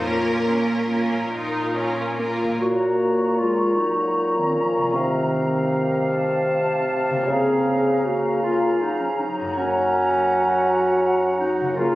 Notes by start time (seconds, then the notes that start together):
Already playing: A#2 F3 A#3 F4
0.00 A#2 A#3 C#4 F4 A#4 C#5
0.46 A#3 C#4 F4 A#4
0.89 A#3 C#4 F4 A#4
1.32 A#2 D#4 F4 A#4
1.75 C#4 F4 A#4
2.18 A#3 F4 A#4
2.42 A#2
2.46 A#3
2.51 F4
2.56 F#4 C#5
2.60 A#2 A#3 C#5 A#5
3.38 G#3 F4
3.76 F#3 D#4
4.36 D#3 C4
4.55 F3 C#4
4.77 C3
4.81 A3
4.86 F4
4.90 C4 D#5
4.95 C3 D#3 F5
6.09 A5
7.10 C#3
7.14 A#3
7.19 F4
7.23 C4 C#5
7.27 C#3 G#4 A#5
8.05 A#3 F#4
8.42 A#3 F4
8.80 F#3 D#4
8.99 F3 C#4
9.18 F#3 D#4
9.40 F#2
9.44 A#3
9.49 F#4
9.53 C#5
9.57 F#3 C#4 F#5
11.39 F#3 D#4
11.60 C#3
11.65 A#3
11.69 F4
11.74 C#3 A#3 F4 A#4 F5
11.79 A#5